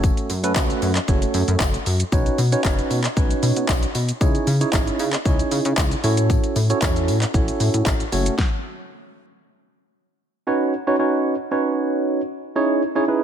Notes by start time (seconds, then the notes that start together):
Already playing: F#1 A3 C#4 F#4 A4 C#5
0.04 kick, tambourine, shaker
0.17 closed hi-hat, shaker
0.30 F#2, open hi-hat, tambourine, shaker
0.43 A3 C#4 F#4 A4 B4, closed hi-hat, shaker
0.56 C#2 A4 B4, kick, clap, tambourine, shaker
0.70 closed hi-hat, shaker
0.82 F#2, open hi-hat, tambourine, shaker
0.96 clap, closed hi-hat, shaker
1.08 F#1 A3 C#4 F#4 A4 C#5, kick, shaker
1.22 closed hi-hat, shaker
1.34 F#2, open hi-hat, tambourine, shaker
1.48 F#2, closed hi-hat, shaker
1.60 F#1, kick, clap, tambourine, shaker
1.74 closed hi-hat, shaker
1.86 F#2, open hi-hat, tambourine, shaker
2.00 closed hi-hat, shaker
2.12 B1 C#4 D#4 F#4 B4 C#5, kick, tambourine, shaker
2.26 closed hi-hat, shaker
2.38 B2, open hi-hat, tambourine, shaker
2.52 C#4 D#4 F#4 B4 C#5, closed hi-hat, shaker
2.65 F#1, kick, clap, tambourine, shaker
2.79 closed hi-hat, shaker
2.91 B2, open hi-hat, tambourine, shaker
3.04 clap, closed hi-hat, shaker
3.16 B1 C#4 D#4 F#4 B4 C#5, kick, tambourine, shaker
3.31 closed hi-hat, shaker
3.43 B2, open hi-hat, tambourine, shaker
3.56 B2, closed hi-hat, shaker
3.69 B1, kick, clap, tambourine, shaker
3.83 closed hi-hat, shaker
3.95 B2, open hi-hat, tambourine, shaker
4.09 closed hi-hat, shaker
4.21 C#2 C#4 D#4 E4 G#4 C#5, kick, tambourine, shaker
4.35 closed hi-hat, shaker
4.47 C#3, open hi-hat, tambourine, shaker
4.61 C#4 D#4 E4 G#4 C#5, closed hi-hat, shaker
4.73 G#1 C#4 D#4 E4 G#4, kick, clap, tambourine, shaker
4.87 closed hi-hat, shaker
4.99 C#3, open hi-hat, tambourine, shaker
5.13 clap, closed hi-hat, shaker
5.25 C#2 C#4 D#4 E4 G#4 C#5, kick, tambourine, shaker
5.39 closed hi-hat, shaker
5.51 C#3, open hi-hat, tambourine, shaker
5.65 C#3, closed hi-hat, shaker
5.77 C#2, kick, clap, tambourine, shaker
5.91 closed hi-hat, shaker
6.04 A2 C#4 E4 F#4 A4 C#5, open hi-hat, tambourine, shaker
6.17 closed hi-hat, shaker
6.30 kick, tambourine, shaker
6.44 closed hi-hat, shaker
6.56 A2, open hi-hat, tambourine, shaker
6.70 C#4 E4 F#4 A4 C#5, closed hi-hat, shaker
6.82 E2, kick, clap, tambourine, shaker
6.96 closed hi-hat, shaker
7.08 A2, open hi-hat, tambourine, shaker
7.22 clap, closed hi-hat, shaker
7.34 A1 C#4 E4 F#4 A4 C#5, kick, shaker
7.48 closed hi-hat, shaker
7.60 A2, open hi-hat, shaker
7.74 A2, closed hi-hat, shaker
7.86 A1, kick, clap, tambourine, shaker
8.00 closed hi-hat, shaker
8.12 F#1 A3 C#4 F#4 A4 C#5, open hi-hat, tambourine, shaker
8.26 closed hi-hat, shaker
8.39 kick, snare
10.47 C#4 D#4 F#4 B4 C#5
10.87 C#4 D#4 F#4 B4 C#5
10.99 C#4 D#4 F#4 B4 C#5
11.51 C#4 D#4 F#4 B4 C#5
12.56 C#4 D#4 E4 G#4 C#5
12.96 C#4 D#4 E4 G#4 C#5
13.08 C#4 D#4 E4 G#4 B4